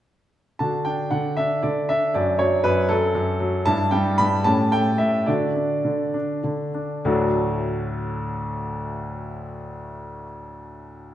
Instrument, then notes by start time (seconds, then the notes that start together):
grand piano
0.59 D3 D4 F#4 A5
0.85 D4 G5
1.11 D3 F#5
1.37 D4 E5
1.63 D3 D5
1.89 D4 E5
2.14 F#2 D4 F#4 D5
2.39 F#3 C#5
2.64 F#2 B4
2.89 F#3 A4
3.15 F#2
3.40 F#3
3.65 G2 D4 E4 A5
3.91 G3 G5
4.18 G2 B5
4.44 A2 C#4 G4 A5
4.72 A3 G5
4.98 A2 E5
5.26 D3 D4 F#4 D5
5.56 D4
5.85 D3
6.14 D4
6.44 D3
6.74 D4
7.05 D2 A2 F#3 A3 D4 F#4